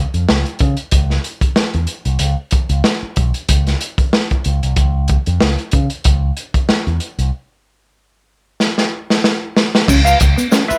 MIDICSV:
0, 0, Header, 1, 7, 480
1, 0, Start_track
1, 0, Tempo, 639659
1, 1653, Time_signature, 4, 2, 24, 8
1, 8091, End_track
2, 0, Start_track
2, 0, Title_t, "Clean electric guitar"
2, 0, Program_c, 0, 27
2, 7540, Note_on_c, 0, 77, 85
2, 7546, Note_on_c, 0, 71, 76
2, 7552, Note_on_c, 0, 65, 68
2, 7638, Note_off_c, 0, 65, 0
2, 7644, Note_off_c, 0, 71, 0
2, 7652, Note_off_c, 0, 77, 0
2, 8017, Note_on_c, 0, 76, 96
2, 8020, Note_on_c, 0, 71, 87
2, 8025, Note_on_c, 0, 65, 69
2, 8091, Note_off_c, 0, 65, 0
2, 8091, Note_off_c, 0, 71, 0
2, 8091, Note_off_c, 0, 76, 0
2, 8091, End_track
3, 0, Start_track
3, 0, Title_t, "Clean electric guitar"
3, 0, Program_c, 1, 27
3, 7417, Note_on_c, 1, 61, 85
3, 7499, Note_off_c, 1, 61, 0
3, 7786, Note_on_c, 1, 59, 73
3, 7851, Note_off_c, 1, 59, 0
3, 7891, Note_on_c, 1, 61, 74
3, 7974, Note_off_c, 1, 61, 0
3, 8091, End_track
4, 0, Start_track
4, 0, Title_t, "Picked electric bass"
4, 0, Program_c, 2, 34
4, 105, Note_on_c, 2, 41, 68
4, 188, Note_off_c, 2, 41, 0
4, 222, Note_on_c, 2, 37, 86
4, 323, Note_off_c, 2, 37, 0
4, 456, Note_on_c, 2, 49, 91
4, 559, Note_off_c, 2, 49, 0
4, 693, Note_on_c, 2, 37, 79
4, 880, Note_off_c, 2, 37, 0
4, 1310, Note_on_c, 2, 40, 73
4, 1391, Note_off_c, 2, 40, 0
4, 1543, Note_on_c, 2, 36, 86
4, 1627, Note_off_c, 2, 36, 0
4, 1650, Note_on_c, 2, 37, 99
4, 1756, Note_off_c, 2, 37, 0
4, 2023, Note_on_c, 2, 37, 72
4, 2107, Note_off_c, 2, 37, 0
4, 2384, Note_on_c, 2, 35, 83
4, 2485, Note_off_c, 2, 35, 0
4, 2621, Note_on_c, 2, 37, 79
4, 2806, Note_off_c, 2, 37, 0
4, 3345, Note_on_c, 2, 37, 83
4, 3447, Note_off_c, 2, 37, 0
4, 3476, Note_on_c, 2, 36, 82
4, 3557, Note_off_c, 2, 36, 0
4, 3578, Note_on_c, 2, 37, 90
4, 3870, Note_off_c, 2, 37, 0
4, 3957, Note_on_c, 2, 41, 87
4, 4038, Note_off_c, 2, 41, 0
4, 4066, Note_on_c, 2, 37, 80
4, 4168, Note_off_c, 2, 37, 0
4, 4302, Note_on_c, 2, 49, 89
4, 4406, Note_off_c, 2, 49, 0
4, 4543, Note_on_c, 2, 37, 88
4, 4729, Note_off_c, 2, 37, 0
4, 5156, Note_on_c, 2, 40, 79
4, 5238, Note_off_c, 2, 40, 0
4, 5392, Note_on_c, 2, 36, 81
4, 5476, Note_off_c, 2, 36, 0
4, 7420, Note_on_c, 2, 37, 113
4, 7605, Note_off_c, 2, 37, 0
4, 7664, Note_on_c, 2, 37, 104
4, 7764, Note_off_c, 2, 37, 0
4, 8091, End_track
5, 0, Start_track
5, 0, Title_t, "Muted clean electric guitar strokes"
5, 7404, Note_on_c, 9, 29, 48
5, 7479, Note_off_c, 9, 29, 0
5, 7647, Note_on_c, 9, 29, 40
5, 7722, Note_off_c, 9, 29, 0
5, 7777, Note_on_c, 9, 29, 45
5, 7852, Note_off_c, 9, 29, 0
5, 7888, Note_on_c, 9, 29, 46
5, 7963, Note_off_c, 9, 29, 0
5, 8020, Note_on_c, 9, 29, 53
5, 8091, Note_off_c, 9, 29, 0
5, 8091, End_track
6, 0, Start_track
6, 0, Title_t, "Muted picked electric bass strokes"
6, 1174, Note_on_c, 9, 29, 43
6, 1249, Note_off_c, 9, 29, 0
6, 2271, Note_on_c, 9, 29, 41
6, 2346, Note_off_c, 9, 29, 0
6, 5026, Note_on_c, 9, 29, 45
6, 5101, Note_off_c, 9, 29, 0
6, 8036, Note_on_c, 9, 29, 49
6, 8091, Note_off_c, 9, 29, 0
6, 8091, End_track
7, 0, Start_track
7, 0, Title_t, "Drums"
7, 104, Note_on_c, 9, 42, 41
7, 179, Note_off_c, 9, 42, 0
7, 214, Note_on_c, 9, 38, 102
7, 289, Note_off_c, 9, 38, 0
7, 345, Note_on_c, 9, 42, 35
7, 420, Note_off_c, 9, 42, 0
7, 442, Note_on_c, 9, 42, 72
7, 454, Note_on_c, 9, 36, 89
7, 517, Note_off_c, 9, 42, 0
7, 529, Note_off_c, 9, 36, 0
7, 575, Note_on_c, 9, 42, 46
7, 650, Note_off_c, 9, 42, 0
7, 686, Note_on_c, 9, 42, 96
7, 693, Note_on_c, 9, 36, 91
7, 761, Note_off_c, 9, 42, 0
7, 768, Note_off_c, 9, 36, 0
7, 828, Note_on_c, 9, 38, 32
7, 903, Note_off_c, 9, 38, 0
7, 932, Note_on_c, 9, 42, 63
7, 1007, Note_off_c, 9, 42, 0
7, 1061, Note_on_c, 9, 36, 77
7, 1063, Note_on_c, 9, 42, 47
7, 1136, Note_off_c, 9, 36, 0
7, 1138, Note_off_c, 9, 42, 0
7, 1170, Note_on_c, 9, 38, 94
7, 1245, Note_off_c, 9, 38, 0
7, 1302, Note_on_c, 9, 42, 32
7, 1377, Note_off_c, 9, 42, 0
7, 1403, Note_on_c, 9, 42, 63
7, 1478, Note_off_c, 9, 42, 0
7, 1540, Note_on_c, 9, 42, 48
7, 1615, Note_off_c, 9, 42, 0
7, 1642, Note_on_c, 9, 42, 83
7, 1717, Note_off_c, 9, 42, 0
7, 1882, Note_on_c, 9, 42, 71
7, 1895, Note_on_c, 9, 36, 89
7, 1957, Note_off_c, 9, 42, 0
7, 1970, Note_off_c, 9, 36, 0
7, 2021, Note_on_c, 9, 42, 46
7, 2096, Note_off_c, 9, 42, 0
7, 2131, Note_on_c, 9, 38, 89
7, 2206, Note_off_c, 9, 38, 0
7, 2371, Note_on_c, 9, 42, 66
7, 2379, Note_on_c, 9, 36, 89
7, 2446, Note_off_c, 9, 42, 0
7, 2454, Note_off_c, 9, 36, 0
7, 2507, Note_on_c, 9, 42, 46
7, 2582, Note_off_c, 9, 42, 0
7, 2615, Note_on_c, 9, 42, 99
7, 2619, Note_on_c, 9, 36, 88
7, 2690, Note_off_c, 9, 42, 0
7, 2694, Note_off_c, 9, 36, 0
7, 2751, Note_on_c, 9, 42, 33
7, 2757, Note_on_c, 9, 38, 33
7, 2826, Note_off_c, 9, 42, 0
7, 2832, Note_off_c, 9, 38, 0
7, 2856, Note_on_c, 9, 42, 69
7, 2931, Note_off_c, 9, 42, 0
7, 2987, Note_on_c, 9, 36, 80
7, 2990, Note_on_c, 9, 42, 45
7, 3062, Note_off_c, 9, 36, 0
7, 3065, Note_off_c, 9, 42, 0
7, 3099, Note_on_c, 9, 38, 100
7, 3174, Note_off_c, 9, 38, 0
7, 3231, Note_on_c, 9, 42, 30
7, 3236, Note_on_c, 9, 36, 76
7, 3306, Note_off_c, 9, 42, 0
7, 3311, Note_off_c, 9, 36, 0
7, 3335, Note_on_c, 9, 42, 65
7, 3410, Note_off_c, 9, 42, 0
7, 3474, Note_on_c, 9, 42, 50
7, 3549, Note_off_c, 9, 42, 0
7, 3574, Note_on_c, 9, 42, 81
7, 3576, Note_on_c, 9, 36, 103
7, 3649, Note_off_c, 9, 42, 0
7, 3651, Note_off_c, 9, 36, 0
7, 3811, Note_on_c, 9, 42, 67
7, 3824, Note_on_c, 9, 36, 82
7, 3886, Note_off_c, 9, 42, 0
7, 3899, Note_off_c, 9, 36, 0
7, 3949, Note_on_c, 9, 42, 46
7, 4024, Note_off_c, 9, 42, 0
7, 4056, Note_on_c, 9, 38, 100
7, 4131, Note_off_c, 9, 38, 0
7, 4191, Note_on_c, 9, 42, 35
7, 4266, Note_off_c, 9, 42, 0
7, 4288, Note_on_c, 9, 42, 70
7, 4302, Note_on_c, 9, 36, 95
7, 4363, Note_off_c, 9, 42, 0
7, 4377, Note_off_c, 9, 36, 0
7, 4426, Note_on_c, 9, 42, 50
7, 4501, Note_off_c, 9, 42, 0
7, 4535, Note_on_c, 9, 42, 85
7, 4542, Note_on_c, 9, 36, 88
7, 4610, Note_off_c, 9, 42, 0
7, 4617, Note_off_c, 9, 36, 0
7, 4777, Note_on_c, 9, 42, 58
7, 4852, Note_off_c, 9, 42, 0
7, 4909, Note_on_c, 9, 42, 46
7, 4910, Note_on_c, 9, 36, 75
7, 4984, Note_off_c, 9, 42, 0
7, 4985, Note_off_c, 9, 36, 0
7, 5018, Note_on_c, 9, 38, 95
7, 5093, Note_off_c, 9, 38, 0
7, 5153, Note_on_c, 9, 42, 27
7, 5228, Note_off_c, 9, 42, 0
7, 5254, Note_on_c, 9, 42, 61
7, 5329, Note_off_c, 9, 42, 0
7, 5393, Note_on_c, 9, 42, 47
7, 5468, Note_off_c, 9, 42, 0
7, 6454, Note_on_c, 9, 38, 53
7, 6529, Note_off_c, 9, 38, 0
7, 6587, Note_on_c, 9, 38, 49
7, 6662, Note_off_c, 9, 38, 0
7, 6831, Note_on_c, 9, 38, 58
7, 6906, Note_off_c, 9, 38, 0
7, 6935, Note_on_c, 9, 38, 87
7, 7010, Note_off_c, 9, 38, 0
7, 7178, Note_on_c, 9, 38, 94
7, 7253, Note_off_c, 9, 38, 0
7, 7315, Note_on_c, 9, 38, 85
7, 7390, Note_off_c, 9, 38, 0
7, 7417, Note_on_c, 9, 36, 122
7, 7421, Note_on_c, 9, 49, 110
7, 7424, Note_on_c, 9, 82, 64
7, 7492, Note_off_c, 9, 36, 0
7, 7496, Note_off_c, 9, 49, 0
7, 7499, Note_off_c, 9, 82, 0
7, 7554, Note_on_c, 9, 82, 71
7, 7557, Note_on_c, 9, 42, 36
7, 7629, Note_off_c, 9, 82, 0
7, 7632, Note_off_c, 9, 42, 0
7, 7652, Note_on_c, 9, 42, 77
7, 7659, Note_on_c, 9, 82, 58
7, 7661, Note_on_c, 9, 36, 94
7, 7727, Note_off_c, 9, 42, 0
7, 7734, Note_off_c, 9, 82, 0
7, 7736, Note_off_c, 9, 36, 0
7, 7791, Note_on_c, 9, 82, 61
7, 7792, Note_on_c, 9, 42, 50
7, 7866, Note_off_c, 9, 82, 0
7, 7867, Note_off_c, 9, 42, 0
7, 7895, Note_on_c, 9, 82, 71
7, 7896, Note_on_c, 9, 38, 117
7, 7970, Note_off_c, 9, 82, 0
7, 7971, Note_off_c, 9, 38, 0
7, 8032, Note_on_c, 9, 42, 36
7, 8033, Note_on_c, 9, 82, 56
7, 8091, Note_off_c, 9, 42, 0
7, 8091, Note_off_c, 9, 82, 0
7, 8091, End_track
0, 0, End_of_file